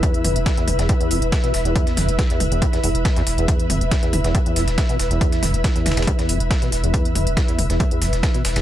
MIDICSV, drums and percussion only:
0, 0, Header, 1, 2, 480
1, 0, Start_track
1, 0, Tempo, 431655
1, 33, Time_signature, 4, 2, 24, 8
1, 9582, End_track
2, 0, Start_track
2, 0, Title_t, "Drums"
2, 32, Note_on_c, 9, 36, 123
2, 33, Note_on_c, 9, 42, 95
2, 34, Note_off_c, 9, 42, 0
2, 34, Note_on_c, 9, 42, 86
2, 144, Note_off_c, 9, 36, 0
2, 145, Note_off_c, 9, 42, 0
2, 158, Note_on_c, 9, 42, 55
2, 269, Note_off_c, 9, 42, 0
2, 272, Note_on_c, 9, 46, 113
2, 272, Note_on_c, 9, 47, 93
2, 274, Note_on_c, 9, 42, 67
2, 384, Note_off_c, 9, 46, 0
2, 384, Note_off_c, 9, 47, 0
2, 385, Note_off_c, 9, 42, 0
2, 399, Note_on_c, 9, 42, 53
2, 510, Note_off_c, 9, 42, 0
2, 512, Note_on_c, 9, 36, 127
2, 512, Note_on_c, 9, 42, 94
2, 514, Note_off_c, 9, 42, 0
2, 514, Note_on_c, 9, 38, 115
2, 514, Note_on_c, 9, 42, 88
2, 623, Note_off_c, 9, 36, 0
2, 625, Note_off_c, 9, 38, 0
2, 625, Note_off_c, 9, 42, 0
2, 639, Note_on_c, 9, 42, 54
2, 750, Note_off_c, 9, 42, 0
2, 752, Note_on_c, 9, 46, 94
2, 752, Note_on_c, 9, 47, 92
2, 754, Note_on_c, 9, 42, 65
2, 863, Note_off_c, 9, 46, 0
2, 863, Note_off_c, 9, 47, 0
2, 865, Note_off_c, 9, 42, 0
2, 878, Note_on_c, 9, 42, 54
2, 880, Note_on_c, 9, 38, 56
2, 989, Note_off_c, 9, 42, 0
2, 990, Note_on_c, 9, 42, 96
2, 991, Note_off_c, 9, 38, 0
2, 992, Note_on_c, 9, 36, 126
2, 994, Note_off_c, 9, 42, 0
2, 994, Note_on_c, 9, 42, 84
2, 1103, Note_off_c, 9, 36, 0
2, 1105, Note_off_c, 9, 42, 0
2, 1118, Note_on_c, 9, 42, 54
2, 1230, Note_off_c, 9, 42, 0
2, 1232, Note_on_c, 9, 46, 109
2, 1234, Note_on_c, 9, 42, 63
2, 1343, Note_off_c, 9, 46, 0
2, 1345, Note_off_c, 9, 42, 0
2, 1357, Note_on_c, 9, 42, 51
2, 1468, Note_off_c, 9, 42, 0
2, 1471, Note_on_c, 9, 42, 92
2, 1472, Note_on_c, 9, 36, 127
2, 1474, Note_off_c, 9, 42, 0
2, 1474, Note_on_c, 9, 38, 121
2, 1474, Note_on_c, 9, 42, 91
2, 1583, Note_off_c, 9, 36, 0
2, 1585, Note_off_c, 9, 38, 0
2, 1585, Note_off_c, 9, 42, 0
2, 1598, Note_on_c, 9, 42, 54
2, 1709, Note_off_c, 9, 42, 0
2, 1711, Note_on_c, 9, 46, 95
2, 1713, Note_on_c, 9, 38, 56
2, 1713, Note_on_c, 9, 42, 71
2, 1822, Note_off_c, 9, 46, 0
2, 1825, Note_off_c, 9, 38, 0
2, 1825, Note_off_c, 9, 42, 0
2, 1838, Note_on_c, 9, 42, 50
2, 1949, Note_off_c, 9, 42, 0
2, 1952, Note_on_c, 9, 36, 127
2, 1952, Note_on_c, 9, 42, 91
2, 1953, Note_off_c, 9, 42, 0
2, 1953, Note_on_c, 9, 42, 92
2, 2063, Note_off_c, 9, 36, 0
2, 2064, Note_off_c, 9, 42, 0
2, 2079, Note_on_c, 9, 38, 49
2, 2079, Note_on_c, 9, 42, 49
2, 2190, Note_off_c, 9, 38, 0
2, 2190, Note_off_c, 9, 42, 0
2, 2192, Note_on_c, 9, 38, 55
2, 2192, Note_on_c, 9, 42, 69
2, 2193, Note_on_c, 9, 46, 110
2, 2193, Note_on_c, 9, 47, 100
2, 2304, Note_off_c, 9, 38, 0
2, 2304, Note_off_c, 9, 42, 0
2, 2304, Note_off_c, 9, 46, 0
2, 2304, Note_off_c, 9, 47, 0
2, 2319, Note_on_c, 9, 42, 50
2, 2430, Note_off_c, 9, 42, 0
2, 2431, Note_on_c, 9, 42, 87
2, 2432, Note_off_c, 9, 42, 0
2, 2432, Note_on_c, 9, 36, 127
2, 2432, Note_on_c, 9, 38, 114
2, 2432, Note_on_c, 9, 42, 91
2, 2543, Note_off_c, 9, 36, 0
2, 2543, Note_off_c, 9, 38, 0
2, 2543, Note_off_c, 9, 42, 0
2, 2558, Note_on_c, 9, 42, 53
2, 2670, Note_off_c, 9, 42, 0
2, 2672, Note_on_c, 9, 42, 65
2, 2672, Note_on_c, 9, 46, 91
2, 2672, Note_on_c, 9, 47, 98
2, 2783, Note_off_c, 9, 42, 0
2, 2783, Note_off_c, 9, 46, 0
2, 2783, Note_off_c, 9, 47, 0
2, 2799, Note_on_c, 9, 42, 53
2, 2910, Note_off_c, 9, 42, 0
2, 2912, Note_on_c, 9, 36, 117
2, 2912, Note_on_c, 9, 42, 88
2, 2913, Note_off_c, 9, 42, 0
2, 2913, Note_on_c, 9, 42, 89
2, 3023, Note_off_c, 9, 36, 0
2, 3024, Note_off_c, 9, 42, 0
2, 3038, Note_on_c, 9, 38, 54
2, 3038, Note_on_c, 9, 42, 51
2, 3149, Note_off_c, 9, 38, 0
2, 3149, Note_off_c, 9, 42, 0
2, 3152, Note_on_c, 9, 42, 67
2, 3153, Note_on_c, 9, 46, 108
2, 3263, Note_off_c, 9, 42, 0
2, 3264, Note_off_c, 9, 46, 0
2, 3279, Note_on_c, 9, 42, 53
2, 3390, Note_off_c, 9, 42, 0
2, 3392, Note_on_c, 9, 36, 124
2, 3392, Note_on_c, 9, 38, 117
2, 3392, Note_on_c, 9, 42, 93
2, 3503, Note_off_c, 9, 36, 0
2, 3504, Note_off_c, 9, 38, 0
2, 3504, Note_off_c, 9, 42, 0
2, 3519, Note_on_c, 9, 38, 40
2, 3519, Note_on_c, 9, 42, 51
2, 3630, Note_off_c, 9, 38, 0
2, 3630, Note_off_c, 9, 42, 0
2, 3633, Note_on_c, 9, 38, 43
2, 3633, Note_on_c, 9, 42, 69
2, 3633, Note_on_c, 9, 46, 96
2, 3744, Note_off_c, 9, 38, 0
2, 3744, Note_off_c, 9, 42, 0
2, 3744, Note_off_c, 9, 46, 0
2, 3759, Note_on_c, 9, 42, 51
2, 3871, Note_off_c, 9, 42, 0
2, 3873, Note_on_c, 9, 36, 120
2, 3873, Note_on_c, 9, 42, 88
2, 3984, Note_off_c, 9, 36, 0
2, 3984, Note_off_c, 9, 42, 0
2, 3998, Note_on_c, 9, 42, 51
2, 4109, Note_off_c, 9, 42, 0
2, 4113, Note_on_c, 9, 42, 68
2, 4113, Note_on_c, 9, 46, 105
2, 4113, Note_on_c, 9, 47, 100
2, 4224, Note_off_c, 9, 42, 0
2, 4224, Note_off_c, 9, 46, 0
2, 4224, Note_off_c, 9, 47, 0
2, 4240, Note_on_c, 9, 42, 47
2, 4351, Note_off_c, 9, 42, 0
2, 4353, Note_on_c, 9, 36, 121
2, 4353, Note_on_c, 9, 42, 86
2, 4354, Note_off_c, 9, 42, 0
2, 4354, Note_on_c, 9, 38, 115
2, 4354, Note_on_c, 9, 42, 88
2, 4464, Note_off_c, 9, 36, 0
2, 4465, Note_off_c, 9, 38, 0
2, 4465, Note_off_c, 9, 42, 0
2, 4479, Note_on_c, 9, 42, 50
2, 4590, Note_off_c, 9, 42, 0
2, 4593, Note_on_c, 9, 46, 94
2, 4593, Note_on_c, 9, 47, 92
2, 4594, Note_on_c, 9, 42, 65
2, 4704, Note_off_c, 9, 46, 0
2, 4704, Note_off_c, 9, 47, 0
2, 4706, Note_off_c, 9, 42, 0
2, 4719, Note_on_c, 9, 42, 50
2, 4720, Note_on_c, 9, 38, 54
2, 4830, Note_off_c, 9, 42, 0
2, 4832, Note_off_c, 9, 38, 0
2, 4833, Note_on_c, 9, 36, 119
2, 4833, Note_on_c, 9, 42, 85
2, 4834, Note_off_c, 9, 42, 0
2, 4834, Note_on_c, 9, 42, 84
2, 4945, Note_off_c, 9, 36, 0
2, 4945, Note_off_c, 9, 42, 0
2, 4960, Note_on_c, 9, 42, 49
2, 5072, Note_off_c, 9, 42, 0
2, 5073, Note_on_c, 9, 46, 108
2, 5075, Note_on_c, 9, 38, 55
2, 5075, Note_on_c, 9, 42, 70
2, 5184, Note_off_c, 9, 46, 0
2, 5186, Note_off_c, 9, 38, 0
2, 5186, Note_off_c, 9, 42, 0
2, 5200, Note_on_c, 9, 38, 53
2, 5200, Note_on_c, 9, 42, 51
2, 5311, Note_off_c, 9, 42, 0
2, 5312, Note_off_c, 9, 38, 0
2, 5313, Note_on_c, 9, 42, 86
2, 5314, Note_off_c, 9, 42, 0
2, 5314, Note_on_c, 9, 36, 121
2, 5314, Note_on_c, 9, 38, 116
2, 5314, Note_on_c, 9, 42, 86
2, 5425, Note_off_c, 9, 36, 0
2, 5425, Note_off_c, 9, 38, 0
2, 5425, Note_off_c, 9, 42, 0
2, 5440, Note_on_c, 9, 42, 53
2, 5551, Note_off_c, 9, 42, 0
2, 5554, Note_on_c, 9, 46, 96
2, 5555, Note_on_c, 9, 38, 58
2, 5555, Note_on_c, 9, 42, 67
2, 5665, Note_off_c, 9, 46, 0
2, 5666, Note_off_c, 9, 38, 0
2, 5666, Note_off_c, 9, 42, 0
2, 5681, Note_on_c, 9, 42, 48
2, 5792, Note_off_c, 9, 42, 0
2, 5794, Note_on_c, 9, 36, 111
2, 5794, Note_on_c, 9, 42, 92
2, 5795, Note_off_c, 9, 42, 0
2, 5795, Note_on_c, 9, 42, 86
2, 5905, Note_off_c, 9, 36, 0
2, 5906, Note_off_c, 9, 42, 0
2, 5921, Note_on_c, 9, 38, 51
2, 5921, Note_on_c, 9, 42, 51
2, 6032, Note_off_c, 9, 38, 0
2, 6032, Note_off_c, 9, 42, 0
2, 6035, Note_on_c, 9, 38, 57
2, 6035, Note_on_c, 9, 42, 66
2, 6035, Note_on_c, 9, 46, 105
2, 6035, Note_on_c, 9, 47, 94
2, 6146, Note_off_c, 9, 38, 0
2, 6146, Note_off_c, 9, 42, 0
2, 6146, Note_off_c, 9, 46, 0
2, 6146, Note_off_c, 9, 47, 0
2, 6161, Note_on_c, 9, 42, 50
2, 6272, Note_off_c, 9, 42, 0
2, 6274, Note_on_c, 9, 36, 115
2, 6274, Note_on_c, 9, 42, 88
2, 6275, Note_off_c, 9, 42, 0
2, 6275, Note_on_c, 9, 38, 111
2, 6275, Note_on_c, 9, 42, 88
2, 6386, Note_off_c, 9, 36, 0
2, 6387, Note_off_c, 9, 38, 0
2, 6387, Note_off_c, 9, 42, 0
2, 6401, Note_on_c, 9, 42, 48
2, 6512, Note_off_c, 9, 42, 0
2, 6514, Note_on_c, 9, 46, 92
2, 6514, Note_on_c, 9, 47, 96
2, 6516, Note_on_c, 9, 38, 85
2, 6516, Note_on_c, 9, 42, 66
2, 6579, Note_off_c, 9, 38, 0
2, 6579, Note_off_c, 9, 42, 0
2, 6579, Note_on_c, 9, 38, 89
2, 6579, Note_on_c, 9, 42, 64
2, 6626, Note_off_c, 9, 46, 0
2, 6626, Note_off_c, 9, 47, 0
2, 6641, Note_off_c, 9, 42, 0
2, 6641, Note_on_c, 9, 42, 51
2, 6642, Note_off_c, 9, 38, 0
2, 6642, Note_off_c, 9, 42, 0
2, 6642, Note_on_c, 9, 38, 88
2, 6642, Note_on_c, 9, 42, 67
2, 6699, Note_off_c, 9, 38, 0
2, 6699, Note_off_c, 9, 42, 0
2, 6699, Note_on_c, 9, 38, 86
2, 6699, Note_on_c, 9, 42, 67
2, 6754, Note_on_c, 9, 36, 113
2, 6755, Note_off_c, 9, 42, 0
2, 6755, Note_on_c, 9, 42, 89
2, 6756, Note_off_c, 9, 42, 0
2, 6756, Note_on_c, 9, 42, 84
2, 6810, Note_off_c, 9, 38, 0
2, 6866, Note_off_c, 9, 36, 0
2, 6867, Note_off_c, 9, 42, 0
2, 6881, Note_on_c, 9, 42, 51
2, 6882, Note_on_c, 9, 38, 51
2, 6992, Note_off_c, 9, 42, 0
2, 6993, Note_off_c, 9, 38, 0
2, 6995, Note_on_c, 9, 46, 106
2, 6996, Note_on_c, 9, 42, 70
2, 7106, Note_off_c, 9, 46, 0
2, 7107, Note_off_c, 9, 42, 0
2, 7120, Note_on_c, 9, 42, 48
2, 7232, Note_off_c, 9, 42, 0
2, 7234, Note_on_c, 9, 36, 117
2, 7235, Note_on_c, 9, 42, 87
2, 7236, Note_off_c, 9, 42, 0
2, 7236, Note_on_c, 9, 38, 125
2, 7236, Note_on_c, 9, 42, 89
2, 7346, Note_off_c, 9, 36, 0
2, 7347, Note_off_c, 9, 38, 0
2, 7347, Note_off_c, 9, 42, 0
2, 7362, Note_on_c, 9, 38, 39
2, 7362, Note_on_c, 9, 42, 50
2, 7473, Note_off_c, 9, 38, 0
2, 7473, Note_off_c, 9, 42, 0
2, 7476, Note_on_c, 9, 38, 42
2, 7476, Note_on_c, 9, 42, 69
2, 7476, Note_on_c, 9, 46, 94
2, 7587, Note_off_c, 9, 38, 0
2, 7587, Note_off_c, 9, 42, 0
2, 7587, Note_off_c, 9, 46, 0
2, 7602, Note_on_c, 9, 42, 48
2, 7713, Note_off_c, 9, 42, 0
2, 7714, Note_on_c, 9, 36, 115
2, 7715, Note_on_c, 9, 42, 87
2, 7716, Note_off_c, 9, 42, 0
2, 7716, Note_on_c, 9, 42, 87
2, 7825, Note_off_c, 9, 36, 0
2, 7828, Note_off_c, 9, 42, 0
2, 7843, Note_on_c, 9, 42, 51
2, 7954, Note_off_c, 9, 42, 0
2, 7955, Note_on_c, 9, 42, 68
2, 7956, Note_on_c, 9, 46, 98
2, 7956, Note_on_c, 9, 47, 85
2, 8067, Note_off_c, 9, 42, 0
2, 8067, Note_off_c, 9, 46, 0
2, 8067, Note_off_c, 9, 47, 0
2, 8082, Note_on_c, 9, 42, 53
2, 8193, Note_off_c, 9, 42, 0
2, 8194, Note_on_c, 9, 36, 124
2, 8195, Note_on_c, 9, 38, 115
2, 8195, Note_on_c, 9, 42, 91
2, 8305, Note_off_c, 9, 36, 0
2, 8306, Note_off_c, 9, 38, 0
2, 8307, Note_off_c, 9, 42, 0
2, 8322, Note_on_c, 9, 42, 52
2, 8433, Note_off_c, 9, 42, 0
2, 8435, Note_on_c, 9, 46, 87
2, 8435, Note_on_c, 9, 47, 87
2, 8436, Note_on_c, 9, 42, 64
2, 8546, Note_off_c, 9, 46, 0
2, 8546, Note_off_c, 9, 47, 0
2, 8547, Note_off_c, 9, 42, 0
2, 8561, Note_on_c, 9, 38, 57
2, 8562, Note_on_c, 9, 42, 54
2, 8672, Note_off_c, 9, 38, 0
2, 8673, Note_off_c, 9, 42, 0
2, 8674, Note_on_c, 9, 36, 115
2, 8674, Note_on_c, 9, 42, 90
2, 8675, Note_off_c, 9, 42, 0
2, 8675, Note_on_c, 9, 42, 86
2, 8785, Note_off_c, 9, 36, 0
2, 8786, Note_off_c, 9, 42, 0
2, 8799, Note_on_c, 9, 42, 50
2, 8910, Note_off_c, 9, 42, 0
2, 8914, Note_on_c, 9, 38, 54
2, 8914, Note_on_c, 9, 42, 72
2, 8914, Note_on_c, 9, 46, 101
2, 9025, Note_off_c, 9, 46, 0
2, 9026, Note_off_c, 9, 38, 0
2, 9026, Note_off_c, 9, 42, 0
2, 9039, Note_on_c, 9, 42, 51
2, 9041, Note_on_c, 9, 38, 52
2, 9151, Note_off_c, 9, 42, 0
2, 9152, Note_off_c, 9, 38, 0
2, 9153, Note_on_c, 9, 36, 111
2, 9153, Note_on_c, 9, 42, 86
2, 9154, Note_off_c, 9, 42, 0
2, 9154, Note_on_c, 9, 38, 116
2, 9154, Note_on_c, 9, 42, 91
2, 9264, Note_off_c, 9, 36, 0
2, 9266, Note_off_c, 9, 38, 0
2, 9266, Note_off_c, 9, 42, 0
2, 9279, Note_on_c, 9, 42, 48
2, 9390, Note_off_c, 9, 42, 0
2, 9393, Note_on_c, 9, 46, 87
2, 9395, Note_on_c, 9, 38, 103
2, 9395, Note_on_c, 9, 42, 77
2, 9504, Note_off_c, 9, 46, 0
2, 9506, Note_off_c, 9, 38, 0
2, 9506, Note_off_c, 9, 42, 0
2, 9518, Note_on_c, 9, 42, 50
2, 9521, Note_off_c, 9, 42, 0
2, 9521, Note_on_c, 9, 38, 104
2, 9521, Note_on_c, 9, 42, 78
2, 9582, Note_off_c, 9, 38, 0
2, 9582, Note_off_c, 9, 42, 0
2, 9582, End_track
0, 0, End_of_file